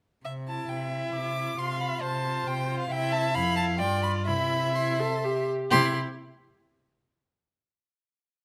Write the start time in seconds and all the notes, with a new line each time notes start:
0.24 C3 E5
0.47 E4 A5
0.69 C3 E5 G5
0.92 E4
1.14 C3 D6
1.37 E4
1.59 C3 F4 F5 C6
1.80 F4 B5
2.02 C3 C5 A5
2.25 F4
2.47 C3 G5
2.69 F4
2.80 F5
2.90 C3 E4 E5 G5
3.12 A5
3.34 F2 E4 F5 B5
3.57 A5
3.79 G2 F4 D5 G5
4.03 B5
4.26 C3 E4 E5 B5
4.75 E4 C6
5.00 A4
5.24 G4
5.71 C3 E4 G4 C6